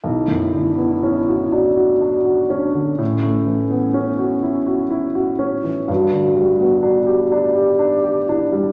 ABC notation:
X:1
M:6/8
L:1/16
Q:3/8=41
K:Bm
V:1 name="Alto flute"
E6 F4 D2 | C8- C2 z2 | F6 G4 E2 |]
V:2 name="Grand piano"
B,,, F,, D, B, C F D F D F C D, | A,, A, E, B, C F E F E F C E, | G,, D, G, B, D G D G D G D G, |]